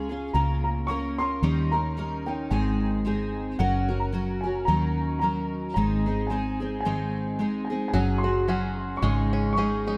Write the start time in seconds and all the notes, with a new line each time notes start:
Already playing: C#2 G#5
0.09 C#4 F4 G#4
0.33 C#2 C#3 A#3 C#4 F4 A#4 A#5
0.64 A#5
0.87 A#3 C#4 F4 A#4 C#6
1.18 C#4 F4 A#4 C6
1.42 D#2 D#3 G3 C#4 D#4 A#4
1.71 C#4 D#4 A#4 A#5
1.97 G3 C#4 D#4 A#4
2.26 C#4 D#4 A#4 G5
2.50 G#1 G#2 D#3 G#3 C4 D#4 G#4 G#5
3.05 G#3 C4 D#4 G#4
3.59 F#1 F#3 C#4 F#4 A#4 F#5
3.89 C#4 F#4 A#4
4.00 A#5
4.12 F#3 C#4 F#4 A#4
4.41 F#4 A#4 G#5
4.46 C#4
4.65 D#2 D#3 F#3 C#4 D#4 A#5
4.69 A#4
5.19 F#3 C#4 D#4 A#5
5.24 A#4
5.74 G#1 G#2 D#3 G#3 C4 D#4 G#4 A#5
6.06 G#3 C4 D#4 G#4
6.27 G#3 C4 G#5
6.31 D#4 G#4
6.60 G#3 C4 D#4 G#4
6.80 G#5
6.85 G#2 D#3 G#3 C4 D#4 G#4
7.39 G#3 C4 D#4 G#4
7.65 G#5
7.70 G#3 C4 D#4 G#4
7.88 G#5
7.93 F#1 F#3 C#4 F#4 G#4
8.18 C6
8.23 C#4 F#4 G#4
8.48 F#3 C#4 F#4 G#4
8.97 C#6
9.02 G#1 G#2 C#3 G#3 C#4 D#4 G#4
9.33 C#4
9.53 G#3 C#6
9.57 C#4 D#4 G#4
9.86 G#3 C#4 D#4 G#4